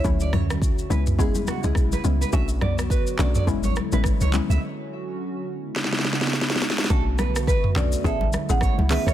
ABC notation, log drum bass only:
X:1
M:4/4
L:1/16
Q:"Swing 16ths" 1/4=105
K:Bdor
V:1 name="Log drum bass" clef=bass
D,,6 C,,4 z C,, B,,,2 C,,2 | B,,,4- B,,, z B,,,2 A,,,3 A,,,2 C,,2 C,, | z16 | B,,,4- B,,, z B,,,2 A,,,3 A,,,2 C,,2 C,, |]